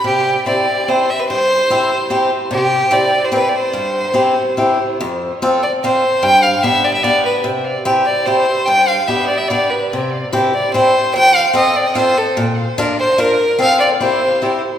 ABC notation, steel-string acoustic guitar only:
X:1
M:3/4
L:1/8
Q:1/4=147
K:C
V:1 name="Steel-string acoustic guitar"
C,2 [CEG] z [CEG] z | G,,2 [CEG] z [CEG] z | C,2 [CEG] z [CEG] z | G,,2 [CEG] z [CEG] z |
[K:F] F,,2 [CFA] z [CFA] z | G,,2 [=B,DG] z [B,DG] z | C,2 [CEG] z [CEG] z | G,,2 [=B,DG] z [B,DG] z |
C,2 [CEG] z [CEG] z | F,,2 [CFA] z [CFA] z | B,,2 [DFB] z [DFB] z | [CFA]2 [CEG] z [CEG] z |]